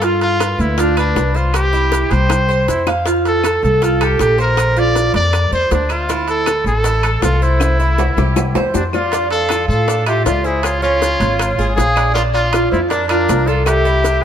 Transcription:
Already playing: upright bass G2
0.02 cuban tres F4, trumpet F4, high bongo, high timbale, maracas
0.21 trumpet F4, high bongo, high timbale, maracas
0.40 cuban tres B4, high bongo, high timbale, claves, maracas
0.59 upright bass D2, trumpet E4, high bongo, maracas
0.78 trumpet D4, cuban tres F4, high bongo, high timbale, maracas
0.97 trumpet D4, cuban tres B4, high timbale, claves, maracas
1.15 upright bass C2, high bongo, low bongo, high timbale, maracas
1.34 trumpet F4, cuban tres C5, high bongo, maracas
1.53 trumpet G4, high bongo, high timbale, claves, maracas
1.73 cuban tres E4, high bongo, maracas
1.92 high bongo, high timbale, maracas
2.11 upright bass C2, cuban tres G4, trumpet C5, high timbale, maracas
2.29 high bongo, high timbale, claves, maracas
2.49 cuban tres C5, maracas
2.68 upright bass F2, trumpet E4, low bongo, high timbale, maracas
2.87 cuban tres F5, low bongo, high timbale, claves, maracas
3.06 cuban tres F4, high bongo, high timbale, maracas
3.25 trumpet A4, high bongo, high timbale, maracas
3.43 cuban tres A4, high bongo, high timbale, claves, maracas
3.63 upright bass C2, trumpet A4, high bongo, maracas
3.82 cuban tres F4, high bongo, high timbale, maracas
4.01 trumpet G4, cuban tres A4, high timbale, claves, maracas
4.19 upright bass A#1, trumpet G4, high bongo, low bongo, high timbale, maracas
4.38 trumpet A#4, cuban tres C5, high bongo, maracas
4.57 high bongo, high timbale, claves, maracas
4.76 cuban tres F4, trumpet D5, high bongo, maracas
4.96 high bongo, high timbale, maracas
5.14 upright bass F2, cuban tres A#4, trumpet D5, high timbale, maracas
5.33 high bongo, high timbale, claves, maracas
5.51 upright bass E2, cuban tres C5, trumpet C5, high bongo, maracas
5.71 upright bass D2, trumpet D4, high bongo, low bongo, high timbale, low timbale, maracas
5.89 trumpet F4, cuban tres E5, high bongo, high timbale, claves, maracas
6.09 cuban tres E4, high bongo, high timbale, maracas
6.28 trumpet A4, high bongo, high timbale, maracas
6.46 cuban tres A4, high bongo, high timbale, claves, maracas
6.64 upright bass A1, trumpet A4, high bongo, maracas
6.84 cuban tres E4, high bongo, high timbale, maracas
7.03 cuban tres A4, high timbale, claves, maracas
7.22 upright bass C2, trumpet F4, high bongo, low bongo, high timbale, low timbale, maracas
7.42 trumpet E4, cuban tres C5, high bongo, maracas
7.60 high bongo, high timbale, claves, maracas
7.80 cuban tres E4, high bongo, maracas
7.98 high bongo, low timbale, maracas
8.17 upright bass C2, cuban tres G4, high bongo, low timbale, maracas
8.36 low bongo, low timbale, claves, maracas
8.55 upright bass E2, cuban tres C5, low bongo, low timbale, maracas
8.74 upright bass F2, trumpet D4, flute G4, low bongo, low timbale, maracas
8.93 trumpet F4, flute D5, cuban tres D5, low bongo, low timbale, claves, maracas
9.12 cuban tres D4, high bongo, high timbale, maracas
9.30 trumpet A4, flute F5, high bongo, high timbale, maracas
9.49 cuban tres F4, high bongo, high timbale, claves, maracas
9.68 upright bass A2, trumpet A4, flute F5, high bongo, maracas
9.88 cuban tres D4, high bongo, high timbale, maracas
10.06 cuban tres F4, trumpet G4, flute E5, high timbale, claves, maracas
10.25 upright bass C#2, trumpet F4, flute D5, high bongo, low bongo, high timbale, maracas
10.44 trumpet E4, cuban tres G#4, flute C5, high bongo, maracas
10.62 trumpet F4, flute C#5, high bongo, high timbale, claves, maracas
10.81 cuban tres C#4, trumpet F4, flute C#5, high bongo, maracas
11.02 high bongo, high timbale, maracas
11.20 upright bass G#1, cuban tres F4, high timbale, maracas
11.39 high bongo, high timbale, claves, maracas
11.58 upright bass G#1, cuban tres G#4, high bongo, maracas
11.75 upright bass A#1, trumpet G#4, flute F5, high bongo, low bongo, high timbale, low timbale, maracas
11.96 cuban tres D5, high bongo, high timbale, claves, maracas
12.13 cuban tres D4, trumpet F4, flute D5, high bongo, high timbale, maracas
12.32 trumpet F4, flute D5, high bongo, high timbale, maracas
12.53 cuban tres F4, high bongo, high timbale, claves, maracas
12.71 upright bass F2, trumpet E4, flute C5, high bongo, maracas
12.89 trumpet D4, cuban tres D4, flute A#4, high bongo, high timbale, maracas
13.08 trumpet D4, cuban tres F4, flute A#4, high timbale, claves, maracas
13.29 upright bass C2, high bongo, low bongo, high timbale, low timbale, maracas
13.46 trumpet F4, cuban tres A4, flute D5, high bongo, maracas
13.66 trumpet G4, flute E5, high bongo, high timbale, claves, maracas
13.85 cuban tres E4, high bongo, maracas
14.04 high bongo, high timbale, maracas

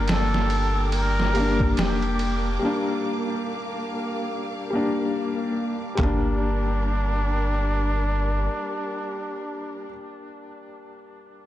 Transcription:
Already playing: sub bass G1, upright piano G3 A#3 D4, string section A#3 G5 D6, muted trumpet A#4
0.08 muted trumpet A4, snare, ride
0.34 snare
0.50 ride
0.92 muted trumpet A#4, ride
1.20 snare
1.34 upright piano G3 A#3, ride
1.39 upright piano D4
1.60 kick
1.77 sub bass F1, muted trumpet G4, snare, ride
2.02 ride
2.19 ride
2.59 upright piano G3 A#3, string section F5
2.65 upright piano D4
4.70 upright piano G3 A#3
4.75 upright piano D4
5.95 sub bass G1, upright piano G3 A#3, kick, clap, floor tom
5.99 string section G3 D4 A#4, muted trumpet D4, upright piano D4

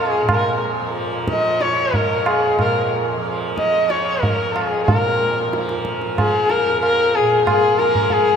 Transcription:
Already playing: tanpura F2 A#2 F3, sarangi G#4
0.22 tanpura A#2
0.29 sarangi A#4, tabla na, tabla ge
0.81 tanpura F3
1.28 sarangi D#5, tabla ke
1.40 tanpura F3
1.61 sarangi C#5, tabla te
1.94 sarangi A#4, tabla tin, tabla ge
1.99 tanpura F2
2.26 sarangi G#4, tabla na
2.58 tanpura A#2, sarangi A#4, tabla na, tabla ge
3.17 tanpura F3
3.57 sarangi D#5, tabla ke
3.74 tanpura F3
3.90 sarangi C#5, tabla te
4.21 sarangi A#4, tabla tin, tabla ge
4.31 tanpura F2
4.53 sarangi G#4, tabla na
4.84 sarangi A#4
4.88 tanpura A#2, tabla tin, tabla ge
5.47 tanpura F3
5.53 tabla te
5.69 tabla te
5.85 tabla ke
6.02 tabla te
6.06 tanpura F3
6.18 sarangi G#4, tabla na, tabla ge
6.50 sarangi A#4, tabla te
6.65 tanpura F2
6.82 sarangi A#4, tabla na
7.15 sarangi G#4
7.20 tanpura A#2
7.46 sarangi G#4, tabla na, tabla ge
7.76 tanpura F3, sarangi A#4, tabla te
7.95 tabla ge
8.10 sarangi G#4, tabla tin, tabla ge
8.33 tanpura F3

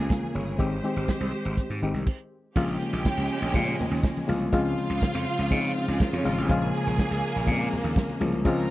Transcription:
Already playing: string section C#3 A#3 G#4, reed electric piano C#3 G#3 A#3 C4 F4
0.10 reed electric piano F4 A#4, kick, snare, tambourine, high conga
0.23 high conga
0.35 slap bass G1, reed electric piano G#4 C#5, open hi-hat
0.46 closed hi-hat
0.58 slap bass G#1, reed electric piano D#3 G#3 C4 G4, string section G#3 G4 C5, kick, closed hi-hat, muted conga
0.83 reed electric piano D#3 G#3 C4 G4, closed hi-hat, muted conga
0.96 slap bass G#1, closed hi-hat
1.08 kick, snare, tambourine, high conga
1.20 slap bass C2, closed hi-hat
1.32 closed hi-hat
1.45 slap bass G#1, closed hi-hat
1.57 kick, closed hi-hat, muted conga
1.70 slap bass G#2
1.82 slap bass G#1, reed electric piano D#3 G#3 C4 G4, closed hi-hat
1.94 slap bass C2, closed hi-hat
2.07 kick, crash
2.56 slap bass A#1, reed electric piano C#3 F3 G#3 A#3 F4, string section G#3 A#3 C#4 G4 G5, kick, crash, muted conga
2.68 closed hi-hat
2.81 closed hi-hat, muted conga
2.93 slap bass A#1, closed hi-hat
3.05 kick, snare, tambourine, high conga
3.17 slap bass C#2, closed hi-hat
3.29 closed hi-hat
3.42 slap bass A#1, closed hi-hat
3.54 slap bass A#2, reed electric piano C#3 F3 G#3 A#3 F4, kick, closed hi-hat, muted conga, low conga
3.66 closed hi-hat
3.79 closed hi-hat, low conga
3.91 slap bass D#2, closed hi-hat
4.03 kick, snare, tambourine, high conga
4.16 closed hi-hat, high conga
4.27 slap bass C2, reed electric piano C#3 F3 G#3 A#3 F4, open hi-hat
4.40 closed hi-hat
4.52 slap bass C#2, string section C#3 C4 F4 F5, reed electric piano C#3 F3 G#3 C4 F4, kick, closed hi-hat, muted conga
4.65 closed hi-hat
4.78 closed hi-hat, muted conga
4.90 slap bass C#2, closed hi-hat
5.01 kick, snare, tambourine, high conga
5.14 slap bass F2, closed hi-hat
5.26 closed hi-hat
5.39 slap bass C#2, closed hi-hat
5.51 reed electric piano C#3 F3 G#3 C4 D#4, slap bass C#3, kick, closed hi-hat, muted conga
5.58 reed electric piano F4
5.63 closed hi-hat
5.76 closed hi-hat
5.88 slap bass C#2, string section G#3 G#4, closed hi-hat
6.00 string section A#3 A#4, kick, snare, tambourine, high conga
6.09 string section C4 C5
6.13 slap bass F2, string section C#4 C#5, closed hi-hat, high conga
6.24 slap bass G#1, reed electric piano C#3 F3 G#3 C4 F4, string section D#4 D#5, open hi-hat
6.32 string section F4 F5
6.37 slap bass A1, string section G4 G5, closed hi-hat
6.48 slap bass A#1, reed electric piano C#3 F3 G#3 A#3 F4, string section G#3 A#3 G#4 G#5, kick, closed hi-hat, muted conga
6.62 closed hi-hat
6.75 closed hi-hat, muted conga
6.87 slap bass A#1, closed hi-hat
6.98 kick, snare, tambourine, high conga
7.11 slap bass C#2, closed hi-hat
7.23 closed hi-hat
7.35 slap bass A#1, closed hi-hat
7.46 slap bass A#2, reed electric piano C#3 F3 G#3 A#3 C4, kick, closed hi-hat, muted conga, low conga
7.59 closed hi-hat
7.72 closed hi-hat, muted conga, low conga
7.84 slap bass D#2, closed hi-hat
7.96 kick, snare, tambourine, high conga
8.09 closed hi-hat, high conga
8.20 slap bass C2, reed electric piano C#3 F3 G#3 A#3 F4, open hi-hat
8.32 closed hi-hat
8.45 slap bass C#2, reed electric piano C#3 F3 G#3 C4 F4, string section C#3 C4 F4 A#4 A#5, kick, closed hi-hat, muted conga
8.57 snare, closed hi-hat

